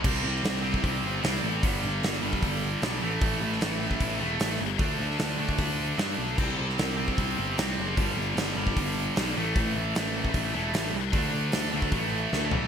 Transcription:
<<
  \new Staff \with { instrumentName = "Distorted electric guitar" } { \clef bass \time 4/4 \key a \minor \tempo 4 = 151 <c g c'>4. <c g c'>4. <c g c'>4 | <g, d g>4. <g, d g>4. <g, d g>8 <a, e a>8~ | <a, e a>4 <a, e a>4. <a, e a>4 r8 | <d a d'>4. <d a d'>4. <d a d'>4 |
<c g c'>4. <c g c'>4. <c g c'>4 | <g, d g>4. <g, d g>4. <g, d g>8 <a, e a>8~ | <a, e a>4 <a, e a>4. <a, e a>4 r8 | <d a d'>4. <d a d'>8 <a, e a>4. <a, e a>8 | }
  \new Staff \with { instrumentName = "Picked electric bass" } { \clef bass \time 4/4 \key a \minor c,8 c,8 c,4 c,8 g,,8 c,8 a,,8 | g,,8 g,,8 g,,8 g,,8 g,,4 b,,8 a,,8 | a,,8 a,,8 a,,4 a,,8 e,,8 a,,8 g,,8 | d,8 d,8 d,8 d,8 d,4 g,8 b,,8 |
c,8 c,8 c,4 c,8 g,,8 c,8 fis,,8 | g,,8 g,,8 g,,8 g,,8 g,,4 b,,8 a,,8 | a,,8 a,,8 a,,4 a,,8 e,,8 a,,8 c,8 | d,8 d,8 d,8 d,8 a,,4 d,8 b,,8 | }
  \new DrumStaff \with { instrumentName = "Drums" } \drummode { \time 4/4 <cymc bd>8. sn16 <hho sn>8. bd16 <hho bd>4 <hho sn>4 | <hho bd>4 <hho sn>8. bd16 <hho bd>4 <hho sn>4 | <hho bd>8. sn16 <hho sn>8. bd16 <hho bd>4 <hho sn>4 | <hho bd>8. sn16 <hho sn>8. bd16 <hho bd>4 <hho sn>4 |
<cymc bd>8. sn16 <hho sn>8. bd16 <hho bd>4 <hho sn>4 | <hho bd>4 <hho sn>8. bd16 <hho bd>4 <hho sn>4 | <hho bd>4 <hho sn>8. bd16 <hho bd>4 <hho sn>4 | <hho bd>4 <hho sn>8. bd16 <hho bd>4 sn8 tomfh8 | }
>>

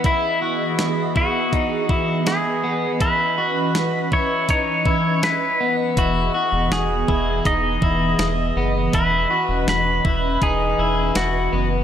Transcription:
<<
  \new Staff \with { instrumentName = "Pedal steel guitar" } { \time 4/4 \key e \major \tempo 4 = 81 e'4. fis'4. gis'4 | b'4. cis''8 cis''4 b'8. r16 | fis'4 gis'4 dis''2 | b'4 b'4 gis'4 fis'8. r16 | }
  \new Staff \with { instrumentName = "Analog synth pad" } { \time 4/4 \key e \major << { <e dis''>1~ | <e dis''>1~ | <e dis''>1~ | <e dis''>1 | } \\ { <b gis'>1 | <cis' b'>1 | <b gis'>1 | <cis' b'>1 | } >> }
  \new Staff \with { instrumentName = "Clean electric guitar" } { \time 4/4 \key e \major e'8 fis'4 e'8 dis'8 e'4 b8 | e'8 fis'4 e'8 dis'8 e'4 b8 | e'8 fis'4 e'8 dis'8 e'4 b8 | e'8 fis'4 e'8 dis'8 e'4 b8 | }
  \new Staff \with { instrumentName = "Analog synth bass" } { \clef bass \time 4/4 \key e \major r1 | r1 | e,,8 r16 e,,16 e,,8 e,,8 e,,8 e,,8 e,,8 fis,,8 | e,,8 r16 e,,16 e,,8 e,,8 e,,8 e,,8 e,,8 fis,,8 | }
  \new DrumStaff \with { instrumentName = "Drums" } \drummode { \time 4/4 <hh bd>4 <hh sn>8 bd8 <hh bd>8 bd8 <hh sn>4 | <hh bd>4 <hh sn>8 bd8 <hh bd>8 bd8 <hh sn>4 | <hh bd>4 <hh sn>8 bd8 <hh bd>8 bd8 <hh sn>4 | <hh bd>4 <hh sn>8 bd8 <hh bd>4 <hh sn>4 | }
>>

